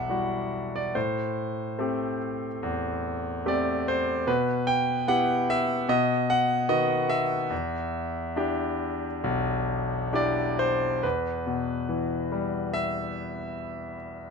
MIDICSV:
0, 0, Header, 1, 2, 480
1, 0, Start_track
1, 0, Key_signature, 1, "minor"
1, 0, Tempo, 842697
1, 545, Time_signature, 4, 2, 24, 8
1, 1976, Tempo, 809717
1, 4376, Tempo, 859599
1, 5336, Tempo, 904977
1, 6296, Tempo, 855920
1, 7256, Tempo, 823045
1, 8157, End_track
2, 0, Start_track
2, 0, Title_t, "Grand piano"
2, 0, Program_c, 0, 0
2, 0, Control_c, 0, 64, 127
2, 0, Note_on_c, 0, 35, 42
2, 0, Note_on_c, 0, 40, 39
2, 0, Note_on_c, 0, 55, 31
2, 0, Note_on_c, 0, 64, 30
2, 0, Note_on_c, 0, 66, 37
2, 0, Note_on_c, 0, 74, 60
2, 0, Note_on_c, 0, 76, 62
2, 0, Note_on_c, 0, 78, 74
2, 53, Note_off_c, 0, 55, 0
2, 53, Note_on_c, 0, 55, 36
2, 54, Note_off_c, 0, 64, 0
2, 54, Note_on_c, 0, 64, 32
2, 59, Note_off_c, 0, 66, 0
2, 59, Note_on_c, 0, 66, 38
2, 431, Note_off_c, 0, 74, 0
2, 431, Note_on_c, 0, 74, 60
2, 443, Note_off_c, 0, 78, 0
2, 445, Note_off_c, 0, 55, 0
2, 446, Note_off_c, 0, 64, 0
2, 448, Note_off_c, 0, 66, 0
2, 518, Note_off_c, 0, 35, 0
2, 519, Note_off_c, 0, 40, 0
2, 541, Note_on_c, 0, 45, 48
2, 542, Note_on_c, 0, 72, 59
2, 551, Control_c, 0, 64, 0
2, 552, Note_off_c, 0, 74, 0
2, 554, Note_off_c, 0, 76, 0
2, 658, Control_c, 0, 64, 127
2, 1018, Note_on_c, 0, 57, 38
2, 1019, Note_on_c, 0, 60, 34
2, 1026, Note_on_c, 0, 67, 39
2, 1240, Note_off_c, 0, 72, 0
2, 1402, Note_off_c, 0, 57, 0
2, 1403, Note_off_c, 0, 60, 0
2, 1406, Note_off_c, 0, 67, 0
2, 1497, Note_on_c, 0, 40, 54
2, 1969, Note_on_c, 0, 60, 35
2, 1970, Note_on_c, 0, 57, 38
2, 1972, Note_on_c, 0, 67, 46
2, 1983, Note_on_c, 0, 74, 69
2, 2206, Note_off_c, 0, 74, 0
2, 2221, Note_on_c, 0, 72, 74
2, 2358, Note_off_c, 0, 60, 0
2, 2359, Note_off_c, 0, 57, 0
2, 2360, Note_off_c, 0, 67, 0
2, 2432, Note_off_c, 0, 40, 0
2, 2433, Note_off_c, 0, 45, 0
2, 2450, Note_on_c, 0, 47, 55
2, 2453, Note_on_c, 0, 71, 73
2, 2465, Control_c, 0, 64, 0
2, 2467, Note_off_c, 0, 72, 0
2, 2560, Control_c, 0, 64, 127
2, 2688, Note_on_c, 0, 79, 82
2, 2702, Note_off_c, 0, 71, 0
2, 2916, Note_off_c, 0, 79, 0
2, 2929, Note_on_c, 0, 59, 44
2, 2932, Note_on_c, 0, 64, 42
2, 2933, Note_on_c, 0, 78, 86
2, 2934, Note_on_c, 0, 67, 48
2, 3180, Note_on_c, 0, 76, 84
2, 3184, Note_off_c, 0, 78, 0
2, 3317, Note_off_c, 0, 59, 0
2, 3318, Note_off_c, 0, 64, 0
2, 3320, Note_off_c, 0, 67, 0
2, 3391, Note_off_c, 0, 47, 0
2, 3408, Note_on_c, 0, 47, 62
2, 3413, Note_on_c, 0, 75, 77
2, 3426, Note_off_c, 0, 76, 0
2, 3426, Control_c, 0, 64, 0
2, 3524, Control_c, 0, 64, 127
2, 3654, Note_on_c, 0, 78, 82
2, 3660, Note_off_c, 0, 75, 0
2, 3883, Note_on_c, 0, 51, 40
2, 3883, Note_on_c, 0, 59, 44
2, 3885, Note_on_c, 0, 66, 48
2, 3886, Note_on_c, 0, 75, 73
2, 3898, Note_off_c, 0, 78, 0
2, 4125, Note_on_c, 0, 76, 80
2, 4135, Note_off_c, 0, 75, 0
2, 4273, Note_off_c, 0, 51, 0
2, 4273, Note_off_c, 0, 59, 0
2, 4274, Note_off_c, 0, 66, 0
2, 4346, Note_off_c, 0, 47, 0
2, 4367, Note_on_c, 0, 40, 58
2, 4382, Control_c, 0, 64, 0
2, 4496, Control_c, 0, 64, 127
2, 4847, Note_on_c, 0, 62, 48
2, 4850, Note_on_c, 0, 64, 41
2, 4853, Note_on_c, 0, 67, 52
2, 5237, Note_off_c, 0, 62, 0
2, 5239, Note_off_c, 0, 64, 0
2, 5240, Note_off_c, 0, 67, 0
2, 5337, Note_on_c, 0, 35, 66
2, 5792, Note_off_c, 0, 76, 0
2, 5808, Note_on_c, 0, 62, 45
2, 5809, Note_on_c, 0, 64, 41
2, 5814, Note_on_c, 0, 67, 50
2, 5823, Note_on_c, 0, 74, 73
2, 6054, Note_on_c, 0, 72, 79
2, 6070, Note_off_c, 0, 74, 0
2, 6194, Note_off_c, 0, 62, 0
2, 6195, Note_off_c, 0, 64, 0
2, 6198, Note_off_c, 0, 67, 0
2, 6270, Note_off_c, 0, 40, 0
2, 6274, Note_off_c, 0, 35, 0
2, 6275, Note_off_c, 0, 72, 0
2, 6287, Note_on_c, 0, 71, 62
2, 6290, Note_on_c, 0, 40, 46
2, 6303, Control_c, 0, 64, 0
2, 6403, Control_c, 0, 64, 127
2, 6531, Note_on_c, 0, 47, 41
2, 6769, Note_on_c, 0, 52, 40
2, 7010, Note_on_c, 0, 55, 41
2, 7243, Note_on_c, 0, 76, 79
2, 7281, Note_off_c, 0, 71, 0
2, 7475, Note_off_c, 0, 47, 0
2, 7711, Note_off_c, 0, 52, 0
2, 7948, Note_off_c, 0, 55, 0
2, 8157, Note_off_c, 0, 40, 0
2, 8157, Note_off_c, 0, 76, 0
2, 8157, End_track
0, 0, End_of_file